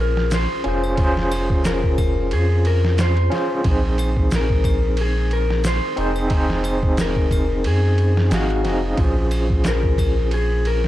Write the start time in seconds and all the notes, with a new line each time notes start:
Already playing: A#1 C#4 F4 G#4 C5, impact
0.01 A#4
0.17 snare
0.31 C5, snare, ride, shaker
0.64 F1 C#4 F4 G#4, ride
0.69 C5
0.84 triangle
0.95 C#4 F4, kick, ride
1.02 G#4 C5
1.17 snare
1.31 ride, triangle
1.50 kick
1.64 A#4, snare, ride, shaker
1.84 kick
1.98 kick, ride, triangle
2.31 F2 G#4, ride
2.65 A#4, ride
2.85 snare
2.98 C5, snare, ride, shaker
3.17 ride
3.30 C#4 F4 G#4, snare, ride
3.35 C5
3.62 A#1 C4 D#4, kick, ride
3.68 G#4 C5
3.98 ride, triangle
4.17 kick
4.31 snare, ride, shaker
4.36 A#4
4.50 kick
4.64 kick, ride, triangle
4.97 ride
5.01 G#4
5.31 A#4, ride
5.50 snare
5.64 C5, snare, ride, shaker
5.97 F1 C4 D#4 G#4, ride
6.01 C5
6.16 triangle
6.28 C4 D#4, kick, ride
6.34 G#4 C5
6.50 snare
6.64 ride, triangle
6.83 kick
6.97 A#4, snare, ride, shaker
7.16 kick
7.31 kick, ride, triangle
7.64 F#2 G#4, ride
7.98 ride
8.17 snare
8.30 G#1 C4 D#4 G#4, snare, ride, shaker
8.34 F#4 F5
8.50 ride
8.64 F1 C4 D#4 G#4, snare, ride
8.68 D#5
8.94 A#1 C#4 F4, kick, ride
9.01 G#4 C5
9.31 ride, triangle
9.50 kick
9.64 snare, ride, shaker
9.68 A#4
9.83 kick
9.98 kick, ride, triangle
10.31 G#4, ride
10.65 A#4, ride
10.84 snare